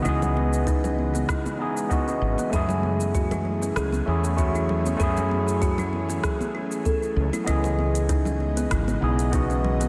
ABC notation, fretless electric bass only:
X:1
M:4/4
L:1/8
Q:"Swing 16ths" 1/4=97
K:C#m
V:1 name="Fretless electric bass" clef=bass
C,,4 z3 G,,, | F,,4 C,, E,,3 | F,,4 z3 C,, | C,,4 G,,, B,,,3 |]